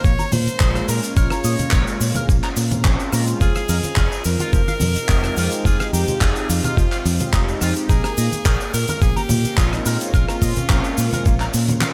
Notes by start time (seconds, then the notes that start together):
Already playing: A#3 A#4 F5 A#5
0.04 A#1 A#3 C#5, kick, closed hi-hat, cabasa, shaker
0.19 A#5, closed hi-hat, high conga, shaker
0.32 A#2 C5, open hi-hat, high conga, low conga, cabasa, shaker
0.46 G#3 A#3 C#4 F4, muted fingered electric bass stroke, closed hi-hat, cabasa, shaker
0.60 A#1 G#4, kick, clap, closed hi-hat, cabasa, shaker
0.75 cross-stick, closed hi-hat, shaker
0.88 A#2 A#4, open hi-hat, cabasa, shaker
1.03 closed hi-hat, cabasa, shaker
1.16 A#1 A#4 C#5, kick, closed hi-hat, cabasa, shaker
1.30 A#5, cross-stick, closed hi-hat, shaker
1.44 A#2 D#5, open hi-hat, cabasa, shaker
1.59 muted fingered electric bass stroke, closed hi-hat, high conga, low conga, cabasa, shaker
1.71 A#1 C#5, kick, clap, closed hi-hat, cabasa, shaker
1.87 closed hi-hat, shaker
2.00 A#2, open hi-hat, cabasa, shaker
2.15 A#4, closed hi-hat, high conga, low conga, cabasa, shaker
2.29 A#1 A#3, kick, closed hi-hat, cabasa, shaker
2.43 A#5, clap, closed hi-hat, shaker
2.56 A#2, open hi-hat, cabasa, shaker
2.71 G#3 C4 C#4 F4, closed hi-hat, high conga, low conga, cabasa, shaker
2.84 A#1 G#4, kick, clap, closed hi-hat, cabasa, shaker
2.99 closed hi-hat, shaker
3.13 A#2 A#4, cross-stick, open hi-hat, cabasa, shaker
3.27 closed hi-hat, cabasa, shaker
3.41 F1 F4 G#4 C5 D#5, kick, closed hi-hat, cabasa, shaker
3.55 F5, cross-stick, closed hi-hat, shaker
3.69 F2 A#4, open hi-hat, cabasa, shaker
3.83 muted fingered electric bass stroke, closed hi-hat, high conga, cabasa, shaker
3.96 F1 F4, kick, clap, closed hi-hat, cabasa, shaker
4.12 closed hi-hat, shaker
4.24 F2 A#4, open hi-hat, cabasa, shaker
4.39 F4, closed hi-hat, high conga, cabasa, shaker
4.53 F1 F3, kick, closed hi-hat, cabasa, shaker
4.68 F5, closed hi-hat, high conga, shaker
4.80 F2, open hi-hat, high conga, low conga, cabasa, shaker
4.95 G#3 C4 D#4 G4, muted fingered electric bass stroke, closed hi-hat, cabasa, shaker
5.09 F1 D#4, kick, clap, closed hi-hat, cabasa, shaker
5.23 cross-stick, closed hi-hat, shaker
5.36 F2 F4, open hi-hat, cabasa, shaker
5.51 closed hi-hat, cabasa, shaker
5.65 F1 F4 G#4, kick, closed hi-hat, cabasa, shaker
5.80 F5, cross-stick, closed hi-hat, shaker
5.93 F2 G4 A#4, open hi-hat, cabasa, shaker
6.08 muted fingered electric bass stroke, closed hi-hat, high conga, low conga, cabasa, shaker
6.21 F1 F4 G#4, kick, clap, closed hi-hat, cabasa, shaker
6.35 closed hi-hat, shaker
6.49 F2 F4, open hi-hat, cabasa, shaker
6.64 F4, closed hi-hat, high conga, low conga, cabasa, shaker
6.77 F1 F3, kick, closed hi-hat, cabasa, shaker
6.92 F5, clap, closed hi-hat, shaker
7.05 F2, open hi-hat, cabasa, shaker
7.19 G#3 C4 D#4 G4, muted fingered electric bass stroke, closed hi-hat, high conga, low conga, cabasa, shaker
7.33 F1 D#4, kick, clap, closed hi-hat, cabasa, shaker
7.48 closed hi-hat, shaker
7.61 F2 F4, cross-stick, open hi-hat, cabasa, shaker
7.76 closed hi-hat, cabasa, shaker
7.89 A#1 A#3 G#4 A#4 C#6, kick, closed hi-hat, cabasa, shaker
8.04 A#5, cross-stick, closed hi-hat, shaker
8.17 A#2 D#5, open hi-hat, cabasa, shaker
8.32 muted fingered electric bass stroke, closed hi-hat, high conga, cabasa, shaker
8.45 A#1 A#4, kick, clap, closed hi-hat, cabasa, shaker
8.61 closed hi-hat, shaker
8.74 A#2 A#4, open hi-hat, cabasa, shaker
8.88 A#4, closed hi-hat, high conga, cabasa, shaker
9.01 A#1 A#3 G#4, kick, closed hi-hat, cabasa, shaker
9.16 G4 A#5, closed hi-hat, high conga, shaker
9.29 A#2, open hi-hat, high conga, low conga, cabasa, shaker
9.43 G#3 C4 C#4 F4, muted fingered electric bass stroke, closed hi-hat, cabasa, shaker
9.57 A#1 F4 G#4, kick, clap, closed hi-hat, cabasa, shaker
9.73 D#4, cross-stick, closed hi-hat, shaker
9.86 A#2 A#4, open hi-hat, cabasa, shaker
10.00 closed hi-hat, cabasa, shaker
10.14 A#1 F4 A#4, kick, closed hi-hat, cabasa, shaker
10.29 A#5, cross-stick, closed hi-hat, shaker
10.42 A#2 D#5, kick, open hi-hat, cabasa, shaker
10.56 muted fingered electric bass stroke, closed hi-hat, high conga, low conga, cabasa, shaker
10.70 A#1 A#4, kick, clap, closed hi-hat, cabasa, shaker
10.84 closed hi-hat, shaker
10.97 A#2, open hi-hat, cabasa, shaker
11.13 A#4, closed hi-hat, high conga, low conga, cabasa, shaker
11.26 A#1 A#3, kick, closed hi-hat, cabasa, shaker
11.40 A#5, clap, closed hi-hat, shaker
11.54 A#2, open hi-hat, cabasa, shaker
11.68 G#3 C4 C#4 F4, closed hi-hat, high conga, low conga, cabasa, shaker
11.81 F5, clap, closed hi-hat, high tom, cabasa, shaker